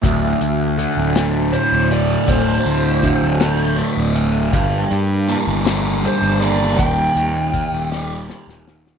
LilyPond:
<<
  \new Staff \with { instrumentName = "Lead electric guitar" } { \time 6/8 \tempo 4. = 53 r2 c''8 d''8 | c''2 r4 | r2 c''8 d''8 | g''2~ g''8 r8 | }
  \new Staff \with { instrumentName = "String machine" } { \time 6/8 << { <a fis' a'>2.~ | <a fis' a'>2. | <bes g' bes'>2.~ | <bes g' bes'>2. | } \\ { d'2.~ | d'2.~ | d'2. | ees'2. | } >> }
  \new Staff \with { instrumentName = "Distorted electric guitar" } { \clef bass \time 6/8 d,4 d8 a8 a,8 d8 | d,4 d8 a8 a,8 d8 | g,4 bes8 d'8 g8 bes8 | ees,4 ees8 g8 bes,8 ees8 | }
  \new Staff \with { instrumentName = "Fingered electric bass" } { \clef bass \time 6/8 d,,8 d,8. d,,4 d,,8. | d,,8 d,8. d,,4 d,,8. | g,,8 g,8. g,,4 g,,8. | ees,,8 ees,8. ees,,4 ees,,8. | }
  \new DrumStaff \with { instrumentName = "Drums" } \drummode { \time 6/8 <hh bd>8 hh8 hh8 <hh sn>8 hh8 hh8 | <hh bd>8 hh8 <hh bd>8 <hh sn>8 hh8 hh8 | <hh bd>8 hh8 hh8 <hh sn>8 hh8 hh8 | <hh bd>8 hh8 <hh bd>8 sn8 sn16 sn16 sn16 sn16 | }
>>